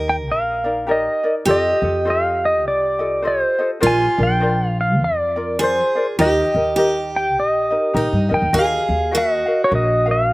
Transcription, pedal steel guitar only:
0.09 G5
0.32 F5
0.91 D#5
1.51 D#5
2.10 F5
2.45 D#5
2.68 D5
3.27 C5
3.87 G#5
4.23 G5
4.68 F5
4.81 F5
5.04 D5
5.64 C5
6.21 D#5
7.16 G5
7.40 D#5
8.34 G5
8.59 F5
9.18 D#5
9.64 C#5
9.75 D#5
10.11 F5

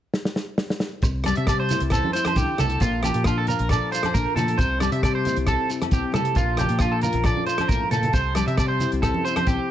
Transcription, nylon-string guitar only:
1.04 muted nylon-string guitar stroke
1.26 G3
1.48 C4
1.71 E4
1.93 C5
2.15 E4
2.37 D3
2.58 C3
2.82 A#2
3.04 F3
3.27 D4
3.49 F4
3.71 A4
3.94 F4
4.16 D4
4.37 F3
4.59 C3
4.80 G3
5.04 C4
5.26 E4
5.47 muted nylon-string guitar stroke
5.70 E4
5.92 C4
6.12 G3
6.35 A#2
6.56 F3
6.79 D4
7.03 F4
7.25 A4
7.46 F4
7.68 A2
7.90 A#2
8.13 C3
8.35 G3
8.59 C4
8.81 E4
9.04 C5
9.27 E4
9.48 C4

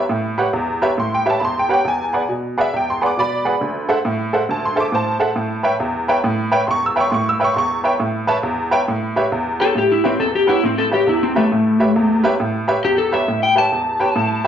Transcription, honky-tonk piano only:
0.09 A2
0.38 G4 B4 C#5 F#5
0.53 E2
0.82 G4 B4 C#5 E5
0.98 A2 C6
1.14 G5
1.26 G4 B4 C#5 E5
1.30 A5
1.40 E2 B5
1.45 C6
1.59 G5
1.69 G4 B4 C#5 F#5
1.73 G5
1.85 E2 G#5
2.13 G#4 B4 D5 F#5
2.29 B2
2.58 G#4 B4 D5 E5 F#5
2.73 E2 G5
2.90 C6
3.01 G#4 B4 D5 F#5
3.06 D6
3.17 B2 D5 B5
3.45 G#4 B4 D5 F#5
3.61 D2
3.89 A4 C5 E5 F#5
4.05 A2
4.33 A4 C5 E5 F#5
4.49 D2 A5
4.65 C6
4.76 A4 C5 E5 A5
4.80 D6
4.92 A2 C5 A5
5.20 A4 C5 E5 F#5
5.36 A2
5.63 B4 C#5 E5 G5
5.80 E2
6.08 B4 C#5 E5 G5
6.24 A2
6.52 B4 C#5 E5 G5
6.67 E2 C6 C#6
6.86 E6
6.96 B4 C#5 E5 G5
7.00 C#6
7.10 A2 C6
7.14 C#6
7.29 E6
7.40 B4 C#5 E5 G5
7.44 C#6
7.53 E2 C6
7.58 C#6
7.84 B4 C#5 E5 G5
8.00 A2
8.27 B4 C#5 E5 A5
8.43 E2
8.71 B4 C#5 E5 G5
8.88 A2
9.16 G4 B4 C#5 E5
9.32 E2
9.60 G4 B4 C#5 G5
9.75 A2
10.04 G4 B4 C#5 E5
10.19 E2
10.47 G4 B4 C#5 F#5
10.63 A2
10.91 G4 B4 C#5 E5
11.07 E2
11.35 G4 B4 C#5 E5
11.52 A2
11.80 G4 B4 C#5 E5
11.96 E2
12.24 G4 B4 C#5 E5
12.40 A2
12.68 G4 B4 C#5 E5
12.84 E2
13.12 G4 B4 C#5 E5
13.28 A2
13.55 G4 B4 C#5 E5
13.72 E2
14.00 G4 B4 C#5 G5
14.16 A2

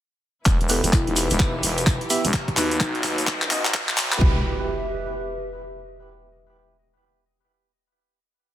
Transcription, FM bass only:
0.46 E1
0.61 E1
0.84 E1
1.07 E1
1.31 E1
1.63 E1
2.25 E1
2.57 D#2
2.80 B1
3.04 D#2
3.51 A1
3.89 B1
4.21 E1

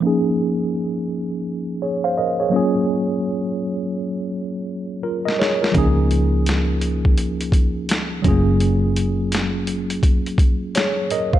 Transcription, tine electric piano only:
0.00 F3 A#3 C#4
0.05 D#4 G#4
1.82 G#4 C#5
2.04 C5 F5
2.18 A#4 D#5
2.40 G#4 C#5
2.50 F#3 A#3 C#4
2.55 F4 G#4
5.03 F4 A#4
5.25 A#4 D#5
5.39 G#4 C#5
5.62 F4 A#4
5.72 F3 A#3 C#4
5.76 D#4 G#4
8.22 F#3 A3 C#4
8.27 A#3 F4 G#4
10.76 G#4 C#5
11.12 A#4 D#5
11.34 C5 F5

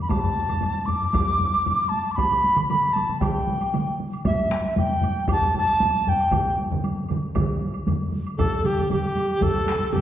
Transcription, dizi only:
0.02 B5
0.09 A5
0.86 D6
1.89 A5
2.12 D6
2.16 B5
2.68 B5
2.93 A5
3.20 G5
4.26 E5
4.79 G5
5.32 A5
5.58 A5
6.09 G5
8.38 A4
8.66 G4
8.92 G4
9.43 A4
9.93 G4

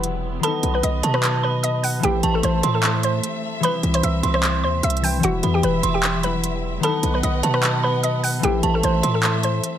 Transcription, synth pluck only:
Already playing: B4 B5
0.43 A4 A5
0.74 B4 B5
0.83 D#5 D#6
1.14 B4 B5
1.43 B4 B5
1.63 D#5 D#6
1.83 F#5 F#6
2.04 G4 G5
2.34 A4 A5
2.44 C5 C6
2.74 A4 A5
3.04 C5 C6
3.64 B4 B5
3.94 C5 C6
4.03 E5 E6
4.34 C5 C6
4.64 C5 C6
4.83 E5 E6
5.03 G5 G6
5.24 F#4 F#5
5.54 G4 G5
5.63 B4 B5
5.94 G4 G5
6.23 B4 B5
6.83 A4 A5
7.14 B4 B5
7.23 D#5 D#6
7.54 B4 B5
7.83 B4 B5
8.03 D#5 D#6
8.23 F#5 F#6
8.44 G4 G5
8.74 A4 A5
8.84 C5 C6
9.14 A4 A5
9.44 C5 C6

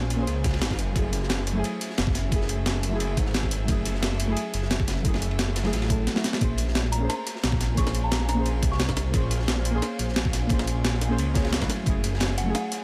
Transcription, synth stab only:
Already playing: A#3 C#4 G#4 C5
0.16 A#3 C#4
0.20 G#4 C5
0.92 F#3 A3
0.97 E4 G#4
1.53 F#3 A3
1.57 E4 G#4
2.29 F#3 A3
2.33 E4 G#4
2.89 F#3 A3
2.93 E4 G#4
3.65 F#3 A3
3.69 E4 G#4
4.25 F#3 A3
4.30 E4 G#4
5.02 F#3 A3
5.06 E4 G#4
5.63 F#3 A3 E4 G#4
5.88 F#3 A3 E4 A4
6.14 F#3 A3 E4 F#4
6.38 A#3 C#4
6.42 G#4 C5
6.98 A#3 C#4
7.02 G#4 C5
7.74 A#3 C#4
7.79 G#4 C5
8.34 A#3 C#4
8.39 G#4 C5
9.11 A#3 C#4
9.15 G#4 C5
9.71 A#3 C#4
9.75 G#4 C5
10.47 A#3 C#4
10.51 G#4 C5
11.09 A#3 C#4 G#4 C5
11.34 A#3 C#4 G#4 C#5
11.60 F#3 A3 E4 F#4
11.83 F#3 A3
11.88 E4 G#4
12.44 F#3 A3
12.48 E4 G#4

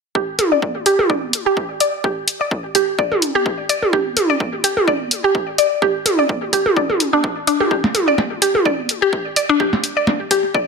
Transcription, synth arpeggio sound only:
0.15 G4
0.52 D5
0.86 G4
1.10 D5
1.46 G4
1.80 D5
2.04 G4
2.41 D5
2.75 G4
2.99 D5
3.35 G4
3.69 D5
3.93 G4
4.30 D5
4.64 G4
4.88 D5
5.24 G4
5.58 D5
5.82 G4
6.19 D5
6.53 G4
6.77 D5
7.13 D4
7.47 D4
7.60 G4
7.71 G4
8.08 D5
8.42 G4
8.65 D5
9.02 G4
9.36 D5
9.49 D4
9.60 G4
9.97 D5
10.31 G4
10.54 D5

